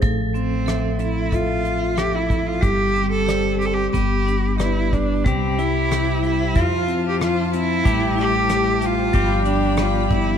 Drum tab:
HH |xxxxxxxx|xxxxxxxx|xxxxxxxx|xxxxxxxx|
SD |--r---r-|--r---r-|--r---r-|--r---r-|
BD |o---o--o|o---o--o|o---o---|o---o--o|